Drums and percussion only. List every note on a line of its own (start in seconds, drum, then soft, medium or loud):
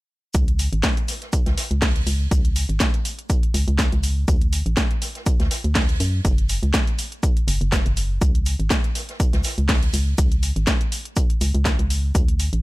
0.34 kick loud
0.34 closed hi-hat medium
0.34 shaker medium
0.48 closed hi-hat soft
0.59 open hi-hat medium
0.59 shaker medium
0.73 closed hi-hat soft
0.83 kick medium
0.83 snare loud
0.83 closed hi-hat medium
0.83 shaker medium
0.97 closed hi-hat soft
1.08 snare soft
1.08 open hi-hat medium
1.08 shaker medium
1.22 snare soft
1.22 closed hi-hat soft
1.33 kick loud
1.33 closed hi-hat medium
1.33 shaker medium
1.46 snare soft
1.46 closed hi-hat soft
1.58 snare soft
1.58 open hi-hat loud
1.58 shaker medium
1.71 closed hi-hat soft
1.82 kick medium
1.82 snare medium
1.82 snare loud
1.82 closed hi-hat medium
1.82 open hi-hat medium
1.96 closed hi-hat soft
2.06 open hi-hat loud
2.06 shaker medium
2.31 kick loud
2.31 closed hi-hat medium
2.31 shaker medium
2.45 closed hi-hat soft
2.56 open hi-hat loud
2.56 shaker medium
2.69 closed hi-hat soft
2.80 kick loud
2.80 snare loud
2.80 closed hi-hat medium
2.80 shaker medium
2.94 closed hi-hat soft
3.05 open hi-hat loud
3.05 shaker medium
3.19 closed hi-hat soft
3.30 kick loud
3.30 closed hi-hat medium
3.30 shaker medium
3.43 closed hi-hat soft
3.54 open hi-hat loud
3.54 shaker medium
3.68 closed hi-hat soft
3.79 kick loud
3.79 snare loud
3.79 closed hi-hat medium
3.79 shaker medium
3.92 closed hi-hat soft
4.03 open hi-hat loud
4.03 shaker medium
4.28 kick loud
4.28 closed hi-hat medium
4.28 shaker medium
4.41 closed hi-hat soft
4.53 open hi-hat loud
4.53 shaker medium
4.66 closed hi-hat soft
4.77 kick loud
4.77 snare loud
4.77 closed hi-hat medium
4.77 shaker medium
4.91 closed hi-hat soft
5.02 snare soft
5.02 open hi-hat loud
5.02 shaker medium
5.15 snare soft
5.15 closed hi-hat soft
5.26 kick loud
5.26 closed hi-hat medium
5.26 shaker medium
5.40 snare medium
5.40 closed hi-hat soft
5.51 snare medium
5.51 open hi-hat loud
5.51 shaker medium
5.64 closed hi-hat soft
5.75 kick loud
5.75 snare loud
5.75 closed hi-hat medium
5.75 open hi-hat medium
5.89 closed hi-hat soft
6.00 open hi-hat loud
6.00 shaker medium
6.25 kick loud
6.25 closed hi-hat medium
6.25 shaker medium
6.38 closed hi-hat soft
6.49 open hi-hat loud
6.49 shaker medium
6.63 closed hi-hat soft
6.74 kick loud
6.74 snare loud
6.74 closed hi-hat medium
6.74 shaker medium
6.87 closed hi-hat soft
6.99 open hi-hat loud
6.99 shaker medium
7.12 closed hi-hat soft
7.23 kick loud
7.23 closed hi-hat medium
7.23 shaker medium
7.37 closed hi-hat soft
7.48 open hi-hat loud
7.48 shaker medium
7.61 closed hi-hat soft
7.72 kick loud
7.72 snare loud
7.72 closed hi-hat medium
7.72 shaker medium
7.86 closed hi-hat soft
7.97 open hi-hat loud
7.97 shaker medium
8.21 kick loud
8.21 closed hi-hat medium
8.21 shaker medium
8.35 closed hi-hat soft
8.46 open hi-hat medium
8.46 shaker medium
8.60 closed hi-hat soft
8.70 kick loud
8.70 snare loud
8.70 closed hi-hat medium
8.70 shaker medium
8.84 closed hi-hat soft
8.95 snare soft
8.95 open hi-hat loud
8.95 shaker medium
9.09 snare soft
9.09 closed hi-hat soft
9.20 kick loud
9.20 closed hi-hat medium
9.20 shaker medium
9.33 snare medium
9.33 closed hi-hat soft
9.43 snare soft
9.43 open hi-hat loud
9.43 shaker medium
9.58 closed hi-hat soft
9.69 kick loud
9.69 snare loud
9.69 closed hi-hat medium
9.69 open hi-hat medium
9.83 closed hi-hat soft
9.93 open hi-hat loud
9.93 shaker medium
10.18 kick loud
10.18 closed hi-hat medium
10.18 shaker medium
10.32 closed hi-hat soft
10.43 open hi-hat medium
10.43 shaker medium
10.56 closed hi-hat soft
10.67 kick medium
10.67 snare loud
10.67 snare medium
10.67 closed hi-hat medium
10.67 shaker medium
10.81 closed hi-hat soft
10.92 open hi-hat loud
10.92 shaker medium
11.05 closed hi-hat soft
11.16 kick loud
11.16 closed hi-hat medium
11.16 shaker medium
11.30 closed hi-hat soft
11.41 open hi-hat medium
11.41 shaker medium
11.55 closed hi-hat soft
11.65 kick loud
11.65 snare loud
11.65 closed hi-hat medium
11.65 shaker medium
11.79 closed hi-hat soft
11.90 open hi-hat loud
11.90 shaker medium
12.15 kick loud
12.15 closed hi-hat medium
12.15 shaker medium
12.28 closed hi-hat soft
12.39 open hi-hat medium
12.39 shaker medium
12.53 closed hi-hat soft